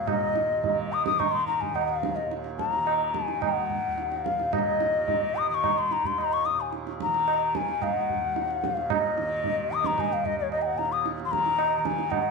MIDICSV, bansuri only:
0, 0, Header, 1, 2, 480
1, 0, Start_track
1, 0, Tempo, 556070
1, 60, Time_signature, 4, 2, 24, 8
1, 5340, Tempo, 538600
1, 10796, End_track
2, 0, Start_track
2, 0, Title_t, "Bansuri"
2, 0, Program_c, 0, 73
2, 68, Note_on_c, 0, 75, 103
2, 799, Note_on_c, 0, 87, 102
2, 812, Note_off_c, 0, 75, 0
2, 910, Note_off_c, 0, 87, 0
2, 915, Note_on_c, 0, 87, 102
2, 1030, Note_on_c, 0, 85, 97
2, 1043, Note_off_c, 0, 87, 0
2, 1139, Note_on_c, 0, 84, 104
2, 1152, Note_off_c, 0, 85, 0
2, 1267, Note_off_c, 0, 84, 0
2, 1272, Note_on_c, 0, 82, 99
2, 1389, Note_on_c, 0, 80, 87
2, 1401, Note_off_c, 0, 82, 0
2, 1511, Note_on_c, 0, 78, 96
2, 1524, Note_off_c, 0, 80, 0
2, 1628, Note_on_c, 0, 77, 90
2, 1641, Note_off_c, 0, 78, 0
2, 1862, Note_on_c, 0, 75, 76
2, 1875, Note_off_c, 0, 77, 0
2, 1991, Note_off_c, 0, 75, 0
2, 2233, Note_on_c, 0, 81, 99
2, 2328, Note_off_c, 0, 81, 0
2, 2328, Note_on_c, 0, 82, 99
2, 2711, Note_on_c, 0, 80, 87
2, 2724, Note_off_c, 0, 82, 0
2, 2951, Note_on_c, 0, 78, 99
2, 2964, Note_off_c, 0, 80, 0
2, 3668, Note_on_c, 0, 77, 91
2, 3681, Note_off_c, 0, 78, 0
2, 3910, Note_on_c, 0, 75, 105
2, 3923, Note_off_c, 0, 77, 0
2, 4632, Note_on_c, 0, 87, 104
2, 4645, Note_off_c, 0, 75, 0
2, 4744, Note_off_c, 0, 87, 0
2, 4749, Note_on_c, 0, 87, 96
2, 4785, Note_on_c, 0, 85, 104
2, 4793, Note_off_c, 0, 87, 0
2, 4993, Note_on_c, 0, 84, 103
2, 5006, Note_off_c, 0, 85, 0
2, 5115, Note_on_c, 0, 82, 97
2, 5128, Note_off_c, 0, 84, 0
2, 5236, Note_on_c, 0, 84, 97
2, 5249, Note_off_c, 0, 82, 0
2, 5361, Note_on_c, 0, 82, 105
2, 5374, Note_off_c, 0, 84, 0
2, 5468, Note_on_c, 0, 85, 106
2, 5481, Note_off_c, 0, 82, 0
2, 5580, Note_on_c, 0, 87, 94
2, 5593, Note_off_c, 0, 85, 0
2, 5714, Note_on_c, 0, 80, 79
2, 5728, Note_off_c, 0, 87, 0
2, 5832, Note_off_c, 0, 80, 0
2, 6086, Note_on_c, 0, 82, 105
2, 6566, Note_on_c, 0, 80, 91
2, 6580, Note_off_c, 0, 82, 0
2, 6803, Note_on_c, 0, 77, 94
2, 6817, Note_off_c, 0, 80, 0
2, 6910, Note_off_c, 0, 77, 0
2, 6910, Note_on_c, 0, 78, 94
2, 7533, Note_on_c, 0, 77, 85
2, 7546, Note_off_c, 0, 78, 0
2, 7768, Note_off_c, 0, 77, 0
2, 7787, Note_on_c, 0, 75, 109
2, 8496, Note_on_c, 0, 87, 105
2, 8509, Note_off_c, 0, 75, 0
2, 8617, Note_on_c, 0, 82, 101
2, 8631, Note_off_c, 0, 87, 0
2, 8739, Note_on_c, 0, 80, 99
2, 8752, Note_off_c, 0, 82, 0
2, 8855, Note_on_c, 0, 77, 98
2, 8868, Note_off_c, 0, 80, 0
2, 8969, Note_on_c, 0, 75, 99
2, 8982, Note_off_c, 0, 77, 0
2, 9084, Note_off_c, 0, 75, 0
2, 9088, Note_on_c, 0, 73, 89
2, 9196, Note_off_c, 0, 73, 0
2, 9202, Note_on_c, 0, 75, 91
2, 9290, Note_on_c, 0, 80, 71
2, 9303, Note_off_c, 0, 75, 0
2, 9322, Note_on_c, 0, 78, 96
2, 9336, Note_off_c, 0, 80, 0
2, 9435, Note_on_c, 0, 82, 96
2, 9449, Note_off_c, 0, 78, 0
2, 9562, Note_on_c, 0, 87, 90
2, 9575, Note_off_c, 0, 82, 0
2, 9678, Note_off_c, 0, 87, 0
2, 9855, Note_on_c, 0, 84, 81
2, 9911, Note_on_c, 0, 82, 113
2, 9924, Note_off_c, 0, 84, 0
2, 10330, Note_off_c, 0, 82, 0
2, 10330, Note_on_c, 0, 82, 79
2, 10393, Note_on_c, 0, 80, 105
2, 10407, Note_off_c, 0, 82, 0
2, 10618, Note_on_c, 0, 78, 110
2, 10631, Note_off_c, 0, 80, 0
2, 10796, Note_off_c, 0, 78, 0
2, 10796, End_track
0, 0, End_of_file